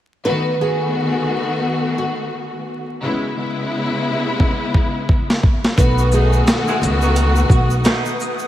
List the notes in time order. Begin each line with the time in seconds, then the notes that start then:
0.25 D#3 A3 B3 F#4 B4
0.59 D#3 A3 B3 F#4 G#4
1.98 F#4
3.02 C#3 G#3 B3 E4
3.35 C#3 G#3 B3 E4
4.40 kick
4.74 kick
5.09 kick
5.30 snare
5.43 kick
5.64 snare
5.76 B1 D#3 A3 B3 F#4 B4 F#5 D#6, kick, closed hi-hat, shaker
5.98 D#3 B3 F#4, shaker
6.11 D#3 F#3 A3 B3 D#4 F#4 G#4, shaker
6.33 shaker
6.47 snare, closed hi-hat, shaker
6.67 G#3 E4 G#4, shaker
6.81 C#2, closed hi-hat, shaker
7.02 D#3 B3 F#4, shaker
7.16 closed hi-hat, shaker
7.36 shaker
7.50 B1 F#4, kick, shaker
7.70 shaker
7.84 B2 A3 D#4, snare, closed hi-hat, shaker
8.06 shaker
8.20 shaker
8.21 shaker
8.39 shaker